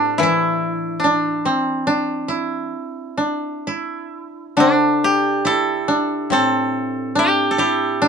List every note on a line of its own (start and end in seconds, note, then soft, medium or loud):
0.00 1.43 A2 soft
0.00 0.22 D3 soft
0.00 0.77 C4 medium
0.00 0.99 D4 medium
0.00 1.04 D4 medium
0.00 0.22 E4 medium
0.00 0.62 G4 medium
0.00 0.90 A4 medium
0.00 0.68 C5 soft
0.00 0.56 D5 soft
0.00 0.39 E5 soft
0.00 0.21 G5 soft
0.00 0.11 A5 soft
0.18 2.72 E3 soft
0.18 2.44 E4 medium
0.23 2.28 E4 medium
1.00 4.08 D4 medium
1.04 1.87 D4 medium
1.45 4.05 C4 medium
1.87 3.17 D4 medium
2.28 3.67 E4 medium
3.17 4.56 D4 soft
3.67 5.44 E4 soft
4.57 7.16 D3 soft
4.57 5.88 D4 medium
4.57 7.03 D4 medium
5.04 7.08 G4 medium
5.45 7.58 E4 medium
5.45 6.32 A4 medium
5.88 7.15 D4 medium
6.30 8.08 A2 soft
6.30 8.08 C4 medium
6.30 7.50 A4 medium
7.15 8.01 D4 medium
7.15 7.59 G4 medium
7.51 8.08 A4 medium
7.58 8.08 E4 medium
7.58 8.08 G4 medium
8.02 8.08 D4 medium